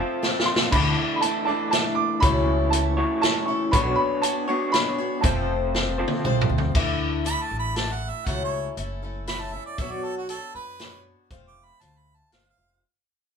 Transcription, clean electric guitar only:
Already playing: C4 F4 A4 C5
0.00 F3
0.71 D3 E3 A3 D4 A4 D5
1.47 D3 E3 A3 D4 A4 D5
2.22 C#3 E3 A3 E4 F#4 C#5
2.97 C#3 E3 A3 E4 F#4 C#5
3.72 B3 D4 F#4 C#5
4.48 B3 D4 F#4 C#5
5.22 F3 C4 F4 A4 C5
5.98 F3 C4 F4 A4 C5

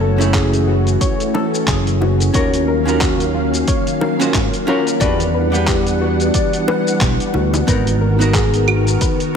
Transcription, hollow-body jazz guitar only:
0.18 A3 C#4 E4 G#4
2.34 C#4 F4 F#4 A#4
2.85 C#4 F4 F#4 A#4
4.20 C#4 F4 F#4 C5
4.67 C#4 F4 F#4 A#4
5.00 D4 F#4 G4 B4
5.52 D4 G4 B4 F#5
7.67 B3 D#4 F#4 A#4
8.19 B3 D#4 F#4 A#4

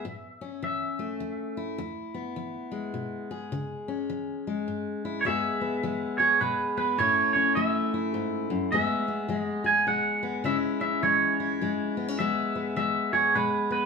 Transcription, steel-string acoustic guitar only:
0.05 A2
0.41 C#4
0.62 E3
0.99 A3
1.20 E2
1.57 E4
1.78 E2
2.14 B3
2.36 E3
2.72 G#3
2.94 B2
3.31 G#4
3.52 C#3
3.88 C#4
4.10 E3
4.47 G#3
4.68 G#2
5.05 E4
5.25 E2 G#3 B3 G#4
5.61 B3
5.83 E3 G#3
6.20 G#4
6.41 B2 G#3
6.77 B3
6.98 A2 A3 C#4 E4
7.36 C#4
7.56 E3 A3
7.94 E4
8.14 G#2
8.50 F#2
8.72 E2 G#3 B3 G#4
9.08 B3
9.28 E3 G#3
9.64 G#4
9.87 B2 G#3
10.23 B3
10.44 C#3 G#3 C#4 E4
10.81 C#4
11.03 E3 G#3
11.40 E4
11.61 G#2 G#3
11.97 B3
12.08 C#4
12.19 E2 G#3 B3 G#4
12.55 B3
12.76 E3 G#3
13.13 G#4
13.35 B2 G#3
13.71 B3

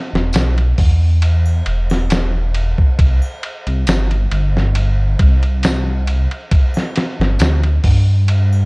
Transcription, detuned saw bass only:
0.13 E1
0.34 B1
0.78 E2
1.66 E1
2.99 C2
3.67 C2
3.87 G1
4.31 G1
5.19 C2
7.20 G1
7.40 D2
7.84 G2

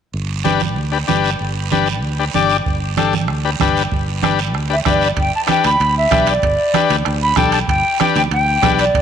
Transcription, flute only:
4.73 E5
4.89 D5
5.05 D5
5.20 G5
5.35 A5
5.50 G5
5.65 B5
5.98 E5
6.30 D5
7.23 B5
7.37 G5
7.52 A5
7.69 G5
8.01 G5
8.17 G5
8.33 G5
8.80 D5

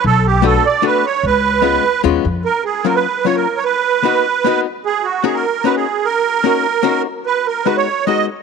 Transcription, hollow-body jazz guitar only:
0.42 A3 B3 D4 F#4
0.82 A3 B3 D4 F#4
1.62 G#3 B3 C#4 F4
2.04 G#3 B3 C#4 F4
2.85 F#3 A#3 C#4 F4
3.25 F#3 A#3 C#4 F4
4.03 A#3 B3 D#4 F#4
4.44 A#3 B3 D#4 F#4
5.24 A#3 C#4 D#4 F#4
5.64 A#3 C#4 D#4 F#4
6.44 A#3 C#4 D#4 F#4
6.83 A#3 C#4 D#4 F#4
7.66 G#3 B3 D#4 F#4
8.07 G#3 B3 D#4 F#4

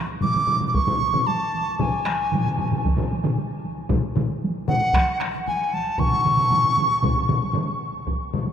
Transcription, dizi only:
0.22 D6
0.68 D6
0.74 C#6
1.27 A5
1.81 G#5
4.68 F#5
5.47 G#5
5.74 A5
5.99 C#6

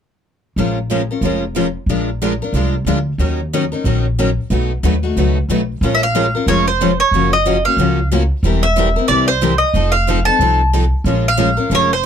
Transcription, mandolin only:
5.95 E5
6.03 F5
6.48 C#5
6.68 C5
7.00 C#5
7.33 D#5
7.65 F5
8.63 E5
9.08 D5
9.28 C5
9.58 D#5
9.92 F5
10.25 A5
11.28 F5
11.75 C#5
11.93 C5

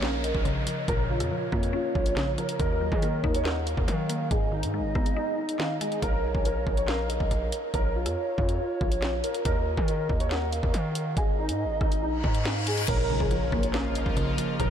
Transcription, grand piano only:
0.02 A#4
0.88 A#4
1.10 F4
1.52 F4
1.74 F4
1.95 F4
2.38 A#4
2.60 A#4
2.92 G#4
3.02 A#4
3.35 C#5
3.45 A#4
4.31 G#4
4.53 D#4
4.95 D#4
5.17 D#4
5.38 D#4
5.81 G#4
6.02 A#4
6.35 G#4
6.45 A#4
6.77 C#5
6.88 A#4
7.74 A#4
7.95 F4
8.38 F4
8.60 F4
8.81 F4
9.24 A#4
9.45 A#4
9.77 G#4
9.88 A#4
10.20 C#5
10.31 A#4
11.17 G#4
11.39 D#4
11.81 D#4
12.03 D#4
12.24 D#4
12.67 G#4
12.88 A#4
13.20 G#4
13.31 A#4
13.63 C#5
13.74 A#4
14.60 A#4

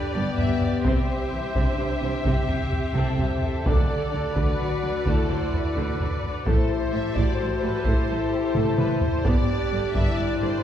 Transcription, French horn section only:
Already playing: D4
0.15 B3
0.85 C4
1.56 D4
2.27 C4
3.65 A4
4.37 F#4
5.06 E4
5.78 D4
6.47 E4
7.17 F#4
7.86 E4
9.24 G4
9.93 E4

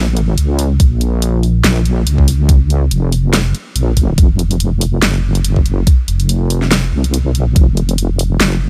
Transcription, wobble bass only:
Already playing: A#1
0.12 A1
0.38 C#2
0.80 A#1
1.64 A#1
2.07 C#2
2.91 F1
3.76 A#1
4.18 F1
5.02 F#1
6.08 F1
6.93 C2
7.37 B1
7.56 F1
8.40 F#1

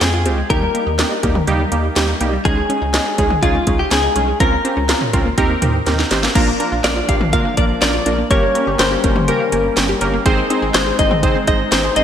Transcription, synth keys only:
0.01 G#3 C4 F4 G#4
0.26 G#3 C4 F4 G4
0.50 G3 A#3 D#4 G4
0.74 G3 A#3 D#4 G4
0.99 G3 A#3 D#4 G4
1.23 G3 A#3 D#4 G4
1.47 G3 A#3 D#4 G4
1.72 G3 A#3 D#4 G4
1.96 G3 A#3 D#4 G4
2.21 G3 A#3 D#4 G4
2.45 G#3 C#4 D#4 G#4
2.69 G#3 C#4 D#4 G#4
2.94 G#3 C#4 D#4 G#4
3.18 G#3 C#4 D#4 G#4
3.43 G#3 C#4 D#4 G#4
3.67 G#3 C#4 D#4 G#4
3.91 G#3 C#4 D#4 G#4
4.16 G#3 C#4 D#4 G#4
4.40 C4 C#4 F4 A#4
4.65 C4 C#4 F4 G4
4.89 C4 C#4 F4 A#4
5.13 C4 C#4 F4 A#4
5.38 C4 D#4 G4 A#4
5.62 C4 D#4 G4 A#4
5.87 C4 D#4 G4 A#4
6.11 C4 D#4 G4 C5
6.35 A#3 D4 F4 A#4
6.60 A#3 D4 F4 A#4
6.84 A#3 D4 F4 A#4
7.08 A#3 D4 F4 G4
7.33 A#3 D4 F4 A#4
7.57 A#3 D4 F4 A#4
7.82 A#3 D4 F4 A#4
8.06 A#3 D4 F4 A#4
8.31 A#3 C#4 G4 A#4
8.55 A#3 C#4 G4 A#4
8.79 A#3 C#4 G4 A#4
9.04 A#3 C#4 G4 A#4
9.28 A#3 C#4 G4 A#4
9.52 A#3 C#4 G4 A#4
9.77 A#3 C#4 G4 A#4
10.01 A#3 C#4 G4 A#4
10.26 C4 D#4 G#4 C5
10.50 C4 D#4 G#4 C5
10.74 C4 D#4 G#4 C5
10.99 C4 D#4 G#4 C5
11.23 C4 D#4 G#4 C5
11.48 C4 D#4 G#4 C5
11.72 C4 D#4 G#4 C5
11.96 C4 D#4 G#4 C5

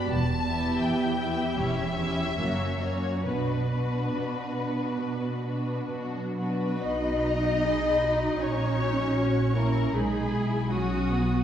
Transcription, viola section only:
0.46 B3 E4
1.19 B3 E4
1.59 C#4 E4
1.98 C#4 E4
2.38 A#3 C#4
2.81 A#3 C#4
3.26 B3 D4
3.70 B3 D4
4.59 B3 D4
5.47 B3 D4
6.36 B3 D4
6.83 B3 F#4
7.63 D#4 G#4
8.02 F#4
8.40 F#4
9.18 C#4 F#4
9.55 E4
9.94 D#4
10.34 E4
10.72 C#4 F#4
11.11 B3

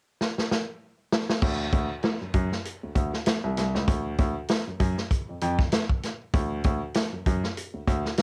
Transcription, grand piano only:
1.42 D2
1.73 D2
2.21 F#2
2.35 F#2
2.84 D2
2.96 D2
3.44 C2
3.58 C2
3.75 C#2
3.88 D2
4.19 D2
4.67 F#2
4.80 F#2
5.29 F2
5.42 F2
6.34 D2
6.65 D2
7.12 F#2
7.27 F#2
7.74 D2
7.87 D2

